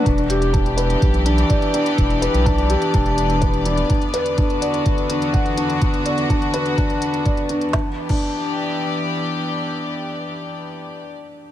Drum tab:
CC |----------------|----------------|----------------|----------------|
HH |xxxxxxxxxxxxxxxx|xxxxxxxxxxxxxxxx|xxxxxxxxxxxxxxxx|xxxxxxxxxxxxxxxx|
SD |----------------|----------------|----------------|----------------|
BD |o---o---o---o---|o---o---o---o---|o---o---o---o---|o---o---o---o---|

CC |---x------------|----------------|
HH |----------------|----------------|
SD |o---------------|----------------|
BD |o--o------------|----------------|